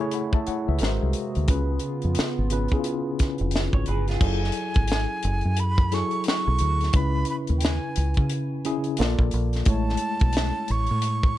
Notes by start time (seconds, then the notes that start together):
Already playing: C#3 E4 G#4
0.00 A3 E4 G#4 C#5
0.11 F#5 B5, closed hi-hat
0.33 E5 A5, kick
0.47 C#5 F#5, muted fingered electric bass stroke, closed hi-hat
0.68 C#2 B4 E5
0.79 G#1 C3 G#3 A#3 F#4 A#4 C5, closed hi-hat
0.83 snare
1.02 C2
1.13 closed hi-hat
1.35 D2, closed hi-hat
1.48 C#2 C#3 B3 C#4 F4 B4, kick, closed hi-hat
1.79 closed hi-hat
2.02 F2, closed hi-hat
2.15 muted fingered electric bass stroke, closed hi-hat
2.19 snare
2.38 G#1
2.50 C#3 C#4 F4 B4, closed hi-hat
2.68 C#3, kick, closed hi-hat
2.73 C#4 E4 G#4
2.79 F4
2.84 closed hi-hat
3.19 muted fingered electric bass stroke, kick, snare, closed hi-hat
3.38 F1, closed hi-hat
3.51 closed hi-hat
3.56 snare
3.73 G#1 C#5, kick
3.86 G1 G#4 B4, closed hi-hat
4.08 F4 G#4, snare, closed hi-hat
4.21 F#1 F#3 E4 G#4 A4 G#5, kick, crash
4.44 snare
4.52 closed hi-hat
4.74 G#1, kick, closed hi-hat
4.88 closed hi-hat
4.92 snare
5.23 F#1, closed hi-hat
5.41 closed hi-hat
5.45 F#2
5.57 B5, closed hi-hat
5.78 kick
5.92 F#3 E4 G#4 A4 C#6, snare, closed hi-hat
6.11 closed hi-hat
6.24 closed hi-hat
6.28 C#6, snare
6.48 B1
6.59 D2, closed hi-hat
6.81 snare, closed hi-hat
6.93 C#2 C#3 C#4 E4 B4 B5, kick, closed hi-hat
7.25 closed hi-hat
7.30 B5
7.47 D#2, closed hi-hat
7.58 G5, closed hi-hat
7.64 G#5, snare
7.96 C#2, closed hi-hat
8.14 C#3, kick, closed hi-hat
8.30 closed hi-hat
8.65 C#3 C#4 E4 G#4, closed hi-hat
8.84 closed hi-hat
8.97 A#1 A#3 F4 A4 D5, closed hi-hat
9.01 snare
9.19 A#1, kick
9.31 A#1, closed hi-hat
9.53 snare, closed hi-hat
9.65 A1 G#3 A3 E4 C#5 A5, kick, closed hi-hat
9.89 snare
9.97 closed hi-hat
10.20 B1, kick, closed hi-hat
10.33 closed hi-hat
10.37 snare
10.68 A1 C#6, closed hi-hat
10.87 closed hi-hat
10.91 A2
11.02 closed hi-hat
11.23 kick